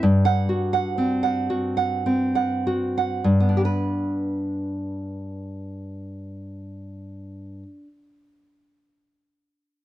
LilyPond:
\new Staff \with { instrumentName = "Nylon-string guitar" } { \time 6/8 \key g \major \tempo 4. = 36 << { r16 fis''8 r2 r16 | <g, b d' g' b'>2.~ | <g, b d' g' b'>2. | } \\ { g,8 fis'16 fis''16 c'16 fis''16 fis'16 fis''16 c'16 fis''16 fis'16 fis''16 | r2. | r2. | } >> }